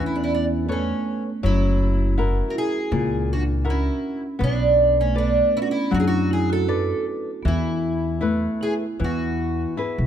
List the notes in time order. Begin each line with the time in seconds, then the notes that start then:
Already playing: E2 E3
0.06 C#4 E4
0.16 B3 D4
0.24 C#4 E4
0.34 B3 D4
0.69 C#4 A4 B4 C#5
0.73 A3
1.43 F#1 F#3 E4
1.48 C#4
2.18 E4 F#4 A#4
2.49 F#4 A#4
2.55 E4 G#4
2.92 C#2 A#2
3.33 D4 F#4
3.65 E4 F#4 A#4
3.70 C#4 E4
4.39 B1 B3
4.44 B3 D4
5.00 A3 C#4
5.15 D4 A4 B4 D5
5.20 B3
5.57 C#4 E4
5.62 D4 F#4
5.67 C#4 E4
5.91 F#2 F#3 D4 F#4
6.00 E4 G#4
6.08 D4 F#4
6.31 E4 G#4
6.50 F#4 A4
6.68 A4 B4 D5
7.43 E2 E3 B3
7.48 E4
8.21 A3 E4 B4
8.61 E4 G#4
9.00 E2 E3 B3
9.04 F#4
9.77 E4 G#4 B4
9.98 B1